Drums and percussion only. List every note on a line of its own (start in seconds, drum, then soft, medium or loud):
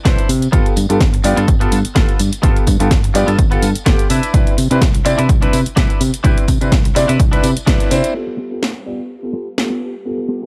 0.05 kick loud
0.05 snare loud
0.05 closed hi-hat medium
0.18 closed hi-hat soft
0.18 tambourine soft
0.29 open hi-hat loud
0.29 tambourine loud
0.42 closed hi-hat soft
0.42 tambourine soft
0.53 kick loud
0.53 closed hi-hat medium
0.53 tambourine medium
0.66 closed hi-hat soft
0.66 tambourine soft
0.76 open hi-hat loud
0.76 tambourine medium
0.90 closed hi-hat soft
0.90 tambourine soft
1.01 kick loud
1.01 snare loud
1.01 closed hi-hat medium
1.14 closed hi-hat soft
1.14 tambourine soft
1.23 open hi-hat medium
1.23 tambourine medium
1.37 closed hi-hat soft
1.37 tambourine soft
1.48 kick loud
1.48 closed hi-hat medium
1.48 tambourine medium
1.61 closed hi-hat soft
1.61 tambourine soft
1.72 open hi-hat loud
1.72 tambourine medium
1.85 closed hi-hat soft
1.85 tambourine soft
1.96 kick loud
1.96 snare loud
1.96 closed hi-hat medium
1.96 tambourine medium
2.09 closed hi-hat soft
2.09 tambourine soft
2.19 open hi-hat medium
2.19 tambourine medium
2.33 closed hi-hat soft
2.33 tambourine soft
2.43 kick loud
2.43 closed hi-hat medium
2.43 tambourine soft
2.56 closed hi-hat soft
2.56 tambourine soft
2.67 kick medium
2.67 open hi-hat loud
2.67 tambourine medium
2.80 closed hi-hat soft
2.80 tambourine soft
2.91 kick loud
2.91 snare loud
2.91 closed hi-hat medium
2.91 tambourine medium
3.04 closed hi-hat soft
3.04 tambourine soft
3.15 open hi-hat medium
3.15 tambourine medium
3.28 closed hi-hat soft
3.28 tambourine soft
3.39 kick loud
3.39 closed hi-hat medium
3.39 tambourine soft
3.52 closed hi-hat soft
3.52 tambourine soft
3.63 open hi-hat loud
3.63 tambourine medium
3.75 closed hi-hat soft
3.75 tambourine soft
3.86 kick loud
3.86 snare loud
3.86 closed hi-hat medium
3.86 tambourine soft
3.99 closed hi-hat soft
3.99 tambourine soft
4.10 open hi-hat medium
4.10 tambourine medium
4.23 closed hi-hat soft
4.23 tambourine soft
4.34 kick loud
4.34 closed hi-hat medium
4.34 tambourine soft
4.47 closed hi-hat soft
4.47 tambourine soft
4.58 open hi-hat loud
4.58 tambourine medium
4.71 closed hi-hat soft
4.71 tambourine soft
4.81 kick loud
4.81 snare loud
4.81 closed hi-hat medium
4.81 tambourine soft
4.94 closed hi-hat soft
4.94 tambourine soft
5.05 open hi-hat medium
5.05 tambourine medium
5.18 closed hi-hat soft
5.18 tambourine soft
5.29 kick loud
5.29 closed hi-hat medium
5.29 tambourine soft
5.42 closed hi-hat soft
5.42 tambourine soft
5.53 open hi-hat loud
5.53 tambourine medium
5.65 closed hi-hat soft
5.65 tambourine soft
5.77 kick loud
5.77 snare loud
5.77 closed hi-hat medium
5.77 tambourine soft
5.90 closed hi-hat soft
5.90 tambourine soft
6.01 open hi-hat medium
6.01 tambourine medium
6.14 closed hi-hat soft
6.14 tambourine soft
6.24 kick loud
6.24 closed hi-hat medium
6.24 tambourine soft
6.37 closed hi-hat soft
6.37 tambourine soft
6.48 kick medium
6.48 open hi-hat loud
6.48 tambourine medium
6.61 closed hi-hat soft
6.61 tambourine soft
6.72 kick loud
6.72 snare loud
6.72 closed hi-hat medium
6.72 tambourine medium
6.85 closed hi-hat soft
6.85 tambourine soft
6.96 snare soft
6.96 open hi-hat medium
6.96 tambourine medium
7.08 closed hi-hat soft
7.08 tambourine soft
7.20 kick loud
7.20 closed hi-hat medium
7.20 tambourine medium
7.33 closed hi-hat soft
7.33 tambourine soft
7.43 open hi-hat loud
7.43 tambourine medium
7.57 closed hi-hat soft
7.57 tambourine soft
7.67 kick loud
7.67 snare loud
7.67 closed hi-hat medium
7.67 tambourine soft
7.80 closed hi-hat soft
7.80 tambourine soft
7.91 open hi-hat medium
7.91 tambourine loud
8.04 closed hi-hat soft
8.04 tambourine soft
8.39 tambourine medium
8.63 snare loud
9.58 snare loud